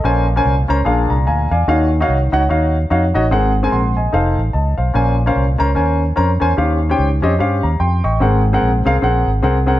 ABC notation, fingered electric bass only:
X:1
M:4/4
L:1/8
Q:"Swing" 1/4=147
K:Bbm
V:1 name="Fingered electric bass" clef=bass
B,,,2 C,, D,, B,,, C,, =D,, _F,, | E,,2 C,, D,, E,,2 F,, =A,,, | A,,,2 B,,,2 F,,, =A,,, D,, _C,, | B,,,2 C,, D,, E,,2 F,, _F,, |
E,,2 D,, F,, =G,, E,, F,, =A,,, | A,,,2 B,,, C,, B,,, A,,, C,,2 |]